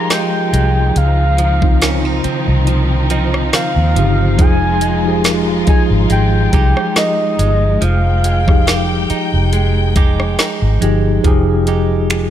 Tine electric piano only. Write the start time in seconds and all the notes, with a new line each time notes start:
Already playing: F3 D#4 F4 G4 G#4 A#4
1.61 C#3 C4 D#4 F4
3.95 C#3 C4 D#4 G4
4.37 F3 D#4 F4 G#4
5.03 F3 D#4 G4
5.08 G#4
5.66 F3 D#4 F4 G#4
8.47 F3 D#4 G4 G#4
10.81 F3 D#4 G4 G#4
11.23 F3 D#4 G4
11.27 G#4